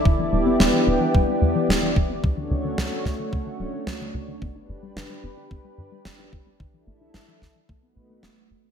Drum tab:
SD |--o---o-|--oo--o-|--o---o-|--oo--o-|
BD |o---o--o|o--oo---|o---o--o|o--oo---|